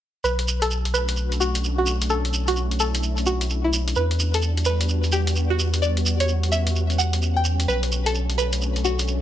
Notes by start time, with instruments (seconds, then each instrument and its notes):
0.24 sub bass B1, string machine A3 C#4 D4 F#4, synth pluck B4, shekere
0.39 closed hi-hat
0.48 shekere
0.61 synth pluck A4, closed hi-hat, shekere
0.71 shekere
0.85 closed hi-hat
0.94 synth pluck B4, shekere
1.08 closed hi-hat, shekere
1.17 shekere
1.32 closed hi-hat, shekere
1.40 synth pluck F#4, shekere
1.55 closed hi-hat, shekere
1.64 shekere
1.78 synth pluck F#4
1.86 shekere
2.01 closed hi-hat, shekere
2.10 string machine E4, synth pluck A4, shekere
2.25 closed hi-hat
2.33 shekere
2.47 synth pluck F#4, closed hi-hat, shekere
2.56 shekere
2.71 closed hi-hat
2.80 synth pluck A4, shekere
2.94 closed hi-hat, shekere
3.03 shekere
3.17 closed hi-hat, shekere
3.26 synth pluck F#4, shekere
3.41 closed hi-hat, shekere
3.50 shekere
3.64 synth pluck E4
3.73 shekere
3.88 closed hi-hat, shekere
3.95 sub bass E2, string machine G3 B3 D4 F#4, synth pluck B4, shekere
4.11 closed hi-hat
4.19 shekere
4.34 synth pluck A4, closed hi-hat, shekere
4.42 shekere
4.57 closed hi-hat
4.65 synth pluck B4, shekere
4.80 closed hi-hat, shekere
4.89 shekere
5.03 closed hi-hat, shekere
5.12 synth pluck G4, shekere
5.27 closed hi-hat, shekere
5.36 shekere
5.50 synth pluck F#4
5.59 shekere
5.73 closed hi-hat, shekere
5.82 string machine C#4, synth pluck D5, shekere
5.97 closed hi-hat
6.06 shekere
6.20 synth pluck C#5, closed hi-hat, shekere
6.28 shekere
6.43 closed hi-hat
6.52 synth pluck E5, shekere
6.67 closed hi-hat, shekere
6.76 shekere
6.90 closed hi-hat, shekere
6.98 synth pluck F#5, shekere
7.13 closed hi-hat, shekere
7.22 shekere
7.36 synth pluck G5
7.44 shekere
7.60 closed hi-hat, shekere
7.68 sub bass B1, string machine A3 D4 F#4, synth pluck B4, shekere
7.83 closed hi-hat
7.92 shekere
8.06 synth pluck A4, closed hi-hat, shekere
8.15 shekere
8.30 closed hi-hat
8.38 synth pluck B4, shekere
8.52 closed hi-hat, shekere
8.61 shekere
8.76 closed hi-hat, shekere
8.85 synth pluck F#4, shekere
8.99 closed hi-hat, shekere
9.08 shekere